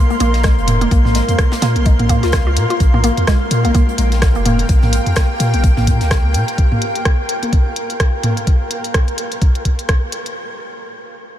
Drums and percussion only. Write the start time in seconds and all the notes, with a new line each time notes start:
0.10 closed hi-hat
0.20 closed hi-hat
0.34 snare, closed hi-hat
0.44 kick, cross-stick, snare, closed hi-hat
0.59 closed hi-hat
0.68 closed hi-hat, mid tom, high tom
0.81 closed hi-hat
0.91 kick, closed hi-hat
1.05 snare, mid tom, high tom
1.15 snare, closed hi-hat
1.29 closed hi-hat
1.39 kick, cross-stick, closed hi-hat
1.52 snare, closed hi-hat
1.62 snare, closed hi-hat
1.76 closed hi-hat, high tom
1.85 kick, closed hi-hat
1.99 closed hi-hat, mid tom, high tom
2.09 kick, closed hi-hat
2.23 snare, closed hi-hat
2.32 kick, cross-stick, snare, closed hi-hat
2.56 closed hi-hat
2.70 closed hi-hat
2.80 kick, closed hi-hat
2.94 mid tom, high tom
3.04 closed hi-hat
3.17 closed hi-hat
3.27 kick, cross-stick, snare, closed hi-hat
3.51 closed hi-hat
3.65 closed hi-hat, high tom
3.74 kick, closed hi-hat
3.89 closed hi-hat
3.98 closed hi-hat
4.12 snare, closed hi-hat
4.22 kick, cross-stick, snare, closed hi-hat
4.35 closed hi-hat
4.46 closed hi-hat, mid tom, high tom
4.59 closed hi-hat
4.69 kick, closed hi-hat
4.82 snare, mid tom, high tom
4.93 closed hi-hat
5.06 closed hi-hat
5.16 kick, cross-stick, snare, closed hi-hat
5.40 closed hi-hat
5.54 closed hi-hat, high tom
5.64 kick, closed hi-hat
5.77 snare, mid tom, high tom
5.87 kick, closed hi-hat
6.01 snare, closed hi-hat
6.11 kick, cross-stick, snare, closed hi-hat
6.34 closed hi-hat
6.48 closed hi-hat
6.58 kick, closed hi-hat
6.72 mid tom, high tom
6.82 closed hi-hat
6.95 closed hi-hat
7.05 kick, cross-stick, closed hi-hat
7.29 closed hi-hat
7.43 closed hi-hat, high tom
7.53 kick, closed hi-hat
7.76 closed hi-hat
7.90 closed hi-hat
8.00 kick, cross-stick, closed hi-hat
8.23 closed hi-hat, mid tom, high tom
8.37 closed hi-hat
8.47 kick, closed hi-hat
8.71 closed hi-hat
8.84 closed hi-hat
8.94 kick, cross-stick, closed hi-hat
9.08 closed hi-hat
9.18 closed hi-hat
9.32 closed hi-hat
9.42 kick, closed hi-hat
9.55 closed hi-hat
9.65 kick, closed hi-hat
9.79 closed hi-hat
9.89 kick, cross-stick, closed hi-hat
10.12 closed hi-hat
10.26 closed hi-hat